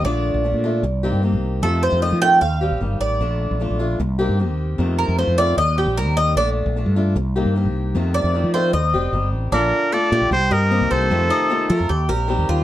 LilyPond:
<<
  \new Staff \with { instrumentName = "Cuban tres" } { \time 4/4 \key bes \major \tempo 4 = 152 d''2. r4 | a'8 c''8 ees''8 g''8 f''4. d''8~ | d''2 r2 | r8 bes'8 c''8 d''8 ees''8 g'8 bes'8 ees''8 |
d''8 r2. r8 | r8 d''4 c''8 ees''4. r8 | d'4 a'8 g'4 ees''4 c''8~ | c''8 ees'4 bes'8 g'8 bes'4 f'8 | }
  \new Staff \with { instrumentName = "Muted trumpet" } { \time 4/4 \key bes \major r1 | r1 | r1 | r1 |
r1 | r1 | bes'4 d''4 c''8 bes'4 a'8~ | a'2~ a'8 r4. | }
  \new Staff \with { instrumentName = "Steel-string acoustic guitar" } { \time 4/4 \key bes \major <d a d' f'>4 <d a d' f'>8 <a d' f'>8 r8 <ees bes c' g'>8 <ees bes c' g'>4 | <c ees a c' f'>4 <ees a c' f'>8 <ees a c' f'>8 r8 <g c' g'>8 <ees g c' g'>4 | <d a d' f'>4 <d a d' f'>8 <a d' f'>8 r8 <ees bes c' g'>8 <ees bes c' g'>4 | <c ees a c' f'>4 <ees a c' f'>8 <ees a c' f'>8 r8 <g c' g'>8 <ees g c' g'>4 |
<d a d' f'>4 <d a d' f'>8 <a d' f'>8 r8 <ees bes c' g'>8 <ees bes c' g'>4 | <c ees a c' f'>4 <ees a c' f'>8 <ees a c' f'>8 r8 <g c' g'>8 <ees g c' g'>4 | <d d' f'>4 <d a d' f'>8 <a d' f'>8 r8 <bes c' g'>8 <c ees bes c' g'>4 | <c ees a c' f'>4 <c ees a c' f'>8 <a c' f'>8 r8 <g c' g'>8 <ees g c' g'>4 | }
  \new Staff \with { instrumentName = "Fretless electric bass" } { \clef bass \time 4/4 \key bes \major bes,,8. bes,,8 bes,8. c,8. g,8 c,8. | f,8. f,8 f8. ees,8. bes,,16 g,,8 a,,8 | bes,,8. bes,,8 bes,,8. c,8. g,8 ees,8. | f,8. f,8 f,8. ees,8. bes,,8 ees,8. |
bes,,8. bes,,8 g,8. c,8. g,8 c,8. | f,8. f,8 f8. ees,8 f,,8 g,,8 a,,8 | bes,,8 r4 bes,16 bes,,16 c,8 g,8. c,16 c,8 | f,8 r4 f16 f,16 ees,8 bes,,8. ees,16 ees,8 | }
>>